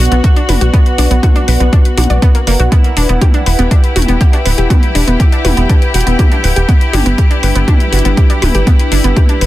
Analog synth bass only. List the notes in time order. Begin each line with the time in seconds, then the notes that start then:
0.12 B1
0.49 F#1
0.61 B1
0.98 B1
1.11 B1
1.48 B1
1.60 B1
1.97 B1
2.10 B1
2.47 F#1
2.60 B1
2.97 E1
3.09 E1
3.46 E1
3.59 E1
3.96 E1
4.08 E1
4.45 D1
4.58 E1
4.95 E1
5.08 E1
5.45 E1
5.57 E1
5.94 E1
6.07 E1
6.44 D1
6.56 E1
6.93 G1
7.06 G1
7.43 G1
7.55 G1
7.93 G1
8.05 G1
8.42 D1
8.55 G1
8.92 G1
9.04 G1
9.41 G1